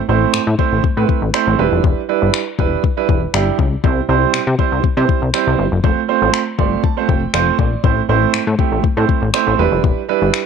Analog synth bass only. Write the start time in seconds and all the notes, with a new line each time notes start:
0.09 A1
0.34 A2
0.47 A2
0.72 A1
0.97 A2
1.22 A1
1.47 A1
1.59 E1
1.72 F1
1.84 E1
2.22 G1
2.59 E1
3.09 E1
3.34 G1
3.59 C#2
3.84 C2
4.09 C2
4.34 C3
4.47 C3
4.72 C2
4.84 C3
4.97 C3
5.22 C2
5.47 C2
5.59 G1
5.72 F#1
5.84 F1
6.22 A1
6.59 G1
7.09 F1
7.34 F1
7.59 A#1
7.84 A1
8.09 A1
8.34 A2
8.47 A2
8.72 A1
8.84 A2
8.97 A2
9.22 A1
9.47 A1
9.59 E1
9.72 F1
9.84 E1
10.22 G1